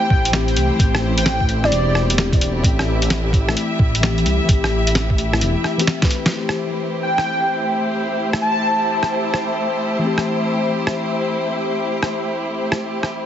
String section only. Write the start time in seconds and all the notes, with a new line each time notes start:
Already playing: A3 E4 G4 C5
2.64 E5
6.34 A3 E4 G4 C5